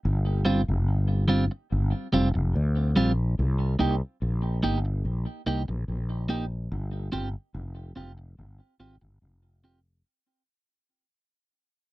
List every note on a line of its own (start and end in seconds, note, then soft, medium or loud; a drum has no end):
0.05 0.64 G1 loud
0.45 0.60 G3 medium
0.45 0.61 C4 medium
0.45 0.61 F4 loud
0.68 0.88 F1 medium
0.88 1.47 G1 medium
1.28 1.44 G3 medium
1.28 1.44 C4 medium
1.28 1.44 F4 medium
1.51 muted clean electric guitar stroke soft
1.72 1.92 G1 medium
2.13 2.33 F1 loud
2.13 2.28 G3 medium
2.13 2.28 C4 medium
2.13 2.28 F4 medium
2.34 2.54 F1 medium
2.34 muted clean electric guitar stroke medium
2.56 2.94 D2 loud
2.96 3.36 A#1 medium
2.96 3.11 G3 medium
2.96 3.11 C4 loud
2.96 3.12 F4 loud
3.39 3.77 C2 medium
3.79 4.00 C2 medium
3.79 3.94 A#3 medium
3.79 3.94 D#4 medium
3.79 3.95 G4 loud
4.22 4.61 A#1 medium
4.63 5.02 G1 medium
4.63 4.78 A#3 medium
4.63 4.78 D#4 medium
4.63 4.78 G4 medium
4.85 muted clean electric guitar stroke soft
5.05 5.25 A#1 medium
5.46 5.67 C2 medium
5.46 5.61 A#3 medium
5.46 5.61 D#4 medium
5.46 5.62 G4 medium
5.68 5.87 A#1 medium
5.68 muted clean electric guitar stroke soft
5.88 6.67 A#1 medium
6.29 6.44 A#3 medium
6.29 6.45 D#4 medium
6.29 6.45 G4 loud
6.72 7.11 G1 loud
7.12 7.33 G1 loud
7.12 7.28 C4 medium
7.12 7.28 F4 medium
7.12 7.28 G4 medium
7.54 7.94 F1 loud
7.96 8.35 F1 medium
7.96 8.11 C4 medium
7.96 8.12 F4 medium
7.96 8.12 G4 medium
8.18 muted clean electric guitar stroke soft
8.38 8.59 G1 medium
8.80 9.00 G#1 medium
8.80 8.95 C4 medium
8.80 8.95 F4 medium
8.80 8.95 G4 medium
9.01 9.20 G1 medium
9.01 muted clean electric guitar stroke medium
9.22 10.01 F1 medium
9.64 9.79 C4 medium
9.64 9.79 F4 medium
9.64 9.79 G4 medium